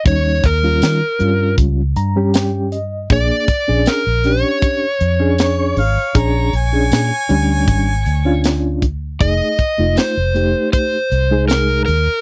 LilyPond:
<<
  \new Staff \with { instrumentName = "Harmonica" } { \time 4/4 \key ees \major \tempo 4 = 79 r1 | r2. cis''8 f''8 | bes''8 aes''2. r8 | r1 | }
  \new Staff \with { instrumentName = "Electric slide guitar" } { \time 4/4 \key ees \major des''8 bes'4. r2 | d''4 bes'8 cis''2~ cis''8~ | cis''2. r4 | ees''4 c''4 c''4 bes'8 bes'8 | }
  \new Staff \with { instrumentName = "Reed electric piano" } { \time 4/4 \key ees \major << { r2 r8 bes''8 g''8 ees''8 | r1 | r1 | r1 | } \\ { <g des' ees'>8 r16 <g des' f'>8 r16 <g des' f'>8. r8 <g des' g'>8. r8 | <bes d' aes'>8 r16 <cis' d' aes'>8 r16 <cis' d' g'>8. r8 <cis' d' aes'>8. r8 | <cis' d' aes'>8 r16 <cis' d' aes'>8 r16 <g cis' d'>8. r8 <cis' d' f'>8. r8 | <a ees' gis'>8 r16 <a ees' f'>8 r16 <a ees' g'>8. r8 <gis ees' gis'>8. r8 | } >> }
  \new Staff \with { instrumentName = "Fingered electric bass" } { \clef bass \time 4/4 \key ees \major ees,8 ees,8 ees16 r16 g,8 des,8 g,4. | bes,,16 r8 bes,,16 r16 bes,,8 r8. f,4 aes,,16 r16 | bes,,8 bes,,8 bes,16 r16 d,8 aes,,8 d,4. | f,,16 r8 f,,16 r16 f,,8 r8. c,4 ees,16 r16 | }
  \new DrumStaff \with { instrumentName = "Drums" } \drummode { \time 4/4 <hh bd>8 <hh bd>8 <hh sn tamb>8 hh8 <hh bd>8 hh8 <hh sn tamb>8 hh8 | <hh bd>8 <hh bd>8 <hh sn tamb>8 hh8 <hh bd>8 hh8 <hh sn tamb>8 hh8 | <hh bd>8 hh8 <hh sn tamb>8 hh8 <hh bd>8 hh8 <hh sn tamb>8 <hh bd>8 | <hh bd>8 <hh bd>8 <hh sn tamb>8 hh8 <hh bd>8 hh8 <hh sn tamb>8 hh8 | }
>>